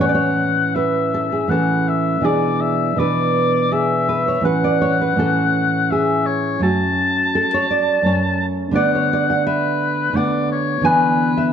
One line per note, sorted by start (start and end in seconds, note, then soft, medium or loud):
0.00 1.46 A2 soft
0.00 1.46 E3 soft
0.00 1.47 C#4 soft
0.00 0.08 C#5 medium
0.00 0.76 F#5 medium
0.09 0.14 D5 medium
0.15 0.73 C#5 medium
0.75 1.12 B4 medium
0.75 1.51 E5 soft
1.14 1.32 A4 medium
1.32 1.51 G#4 medium
1.48 2.20 A2 soft
1.48 2.20 E3 soft
1.48 2.22 C#4 soft
1.48 2.21 A4 medium
1.48 1.90 F#5 medium
1.88 2.27 E5 soft
2.21 2.94 B2 soft
2.21 2.95 E3 soft
2.21 2.95 D4 soft
2.21 2.95 G#4 medium
2.25 2.62 D5 medium
2.61 3.00 E5 soft
2.96 4.39 B2 soft
2.96 4.40 E3 soft
2.96 4.40 D4 soft
2.96 3.69 B4 medium
2.96 3.74 D5 medium
3.72 4.07 G#4 medium
3.72 4.44 E5 medium
4.09 4.26 B4 medium
4.28 4.45 C#5 medium
4.41 5.15 A2 soft
4.41 5.15 E3 soft
4.41 5.16 C#4 soft
4.41 5.92 F#5 medium
4.45 4.63 B4 medium
4.64 4.81 D5 medium
4.82 5.00 C#5 medium
5.01 5.19 B4 medium
5.16 6.58 A2 medium
5.16 6.58 E3 soft
5.16 6.59 C#4 soft
5.16 5.89 A4 medium
5.90 6.61 G#4 medium
5.90 6.28 E5 soft
6.26 6.62 C#5 soft
6.59 7.99 F#2 soft
6.59 8.00 A3 soft
6.59 8.01 C#4 soft
6.59 8.45 A5 medium
6.63 7.32 F#4 medium
7.35 7.53 A4 medium
7.54 7.70 C#5 medium
7.71 8.04 D5 medium
8.02 8.72 F#2 soft
8.02 8.71 A3 soft
8.02 8.71 C#4 soft
8.02 8.74 C#5 medium
8.71 10.10 D3 medium
8.71 10.10 A3 soft
8.71 10.11 B3 soft
8.71 9.42 F#5 medium
8.76 8.93 D5 medium
8.95 9.12 C#5 medium
9.13 9.30 D5 medium
9.30 9.46 F#5 medium
9.46 10.17 B4 medium
9.46 10.13 E5 medium
10.13 10.80 D3 medium
10.13 10.82 A3 soft
10.13 10.83 B3 soft
10.13 10.50 D5 medium
10.13 10.82 F#5 medium
10.52 10.87 C#5 medium
10.81 11.53 D3 medium
10.81 11.53 E3 soft
10.81 11.53 B3 soft
10.81 11.35 G#5 medium
10.86 11.53 B4 medium
11.37 11.53 E5 medium